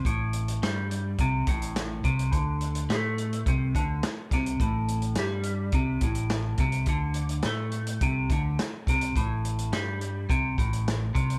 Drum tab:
HH |x-xxx-x-x-xxx-xx|x-xxx-xxx-x-x-xx|x-xxx-x-x-xxx-xx|x-xxx-xxx-x-x-xx|
SD |----o-------o---|----o-------o-o-|----o-------o---|----o-------o-o-|
BD |o-------o-o---o-|o-------o-o---o-|o-------o-o---o-|o-------o-o---o-|

HH |x-xxx-x-x-xxx-xx|
SD |----o-------o---|
BD |o-------o-o---o-|